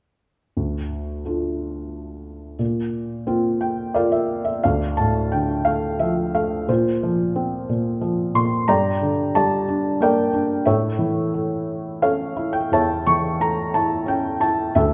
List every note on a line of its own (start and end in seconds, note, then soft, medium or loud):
0.57 2.55 D2 soft
1.25 2.55 A3 soft
1.25 2.55 D4 soft
1.25 2.56 F4 soft
2.59 4.59 A#2 soft
3.27 4.60 A#3 soft
3.27 4.60 C4 soft
3.27 3.94 F4 soft
3.61 3.92 G5 soft
3.94 4.60 F4 soft
3.94 4.60 A#4 soft
3.94 4.48 D5 medium
3.94 4.11 F5 soft
4.12 4.43 E5 medium
4.45 4.61 E5 medium
4.64 6.65 D2 soft
4.64 5.63 A4 soft
4.64 5.63 D5 soft
4.64 4.99 F5 medium
4.97 6.31 A2 soft
4.97 5.33 A5 medium
5.32 6.65 D3 soft
5.32 5.67 G5 medium
5.65 6.33 A3 soft
5.65 6.01 F5 medium
5.99 6.66 F3 soft
5.99 6.35 E5 medium
6.35 6.68 A3 soft
6.35 6.66 F5 medium
6.68 7.68 A#2 soft
6.68 8.33 F4 soft
6.68 8.42 C5 medium
7.03 8.00 F3 soft
7.36 8.65 C4 soft
7.69 8.33 A#2 soft
8.01 8.66 F3 soft
8.35 8.68 A#2 soft
8.35 8.70 C6 medium
8.68 10.62 G2 soft
8.68 9.35 D5 medium
8.68 9.63 G5 medium
8.68 9.36 A#5 medium
9.02 10.29 D3 soft
9.35 10.63 G3 soft
9.35 10.01 D5 soft
9.35 10.02 A5 medium
9.69 10.32 D4 soft
10.01 10.65 A#3 soft
10.01 10.64 A#4 soft
10.01 10.64 D5 medium
10.01 10.69 G5 medium
10.33 10.66 D4 soft
10.66 12.68 A2 soft
10.66 11.98 A4 soft
10.66 11.99 C#5 medium
10.66 12.06 E5 medium
10.99 12.33 E3 soft
11.34 12.69 A3 soft
12.02 13.37 C#4 soft
12.02 13.03 A4 soft
12.02 12.72 C#5 soft
12.02 12.57 F5 medium
12.37 13.70 E4 soft
12.53 12.72 G5 medium
12.72 14.71 E2 soft
12.72 13.71 C#5 soft
12.72 13.71 E5 medium
12.72 13.08 A5 medium
13.07 14.38 E3 soft
13.07 13.42 C#6 medium
13.40 14.71 A3 soft
13.40 13.76 A#5 medium
13.74 14.39 E4 soft
13.74 14.09 A5 medium
14.06 14.72 C#4 soft
14.06 14.43 G5 medium
14.40 14.74 E4 soft
14.40 14.76 A5 medium
14.75 14.94 D2 medium
14.75 14.94 A4 medium
14.75 14.94 E5 medium